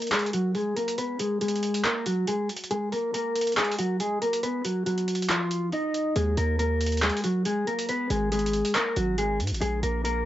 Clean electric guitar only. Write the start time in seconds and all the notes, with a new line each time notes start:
0.12 G#3 G#4
0.33 F#3 F#4
0.55 G#3 G#4
0.76 A#3 A#4
0.98 B3 B4
1.20 G#3 G#4
1.41 G#3 G#4
1.84 A#3 A#4
2.06 F#3 F#4
2.28 G#3 G#4
2.71 G#3 G#4
2.92 A#3 A#4
3.14 A#3 A#4
3.57 G#3 G#4
3.79 F#3 F#4
4.00 G#3 G#4
4.22 A#3 A#4
4.43 B3 B4
4.65 F#3 F#4
4.86 F#3 F#4
5.30 F3 F4
5.73 D#4 D#5
6.16 G#3 G#4
6.38 A#3 A#4
6.59 A#3 A#4
7.02 G#3 G#4
7.24 F#3 F#4
7.46 G#3 G#4
7.67 A#3 A#4
7.89 B3 B4
8.10 G#3 G#4
8.32 G#3 G#4
8.75 A#3 A#4
8.97 F#3 F#4
9.18 G#3 G#4
9.61 G#3 G#4
9.83 A#3 A#4
10.05 A#3 A#4